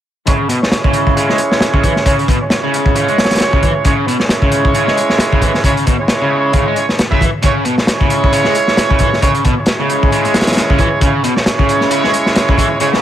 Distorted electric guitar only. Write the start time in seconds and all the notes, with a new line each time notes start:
0.27 C#3
0.49 B2
0.84 C#3
1.16 C#3
1.29 G#3
1.74 C#3
1.84 E3
2.06 C#3
2.28 B2
2.63 C#3
2.95 C#3
3.08 G#3
3.53 C#3
3.63 E3
3.85 C#3
4.07 B2
4.43 C#3
4.75 C#3
4.87 G#3
5.32 C#3
5.42 E3
5.64 C#3
5.87 B2
6.22 C#3
6.54 C#3
6.67 G#3
7.11 C#3
7.21 E3
7.43 C#3
7.65 B2
8.01 C#3
8.33 C#3
8.46 G#3
8.90 C#3
9.00 E3
9.22 C#3
9.45 B2
9.80 C#3
10.12 C#3
10.25 G#3
10.69 C#3
10.79 E3
11.02 C#3
11.24 B2
11.59 C#3
11.91 C#3
12.04 G#3
12.49 C#3
12.58 E3
12.81 C#3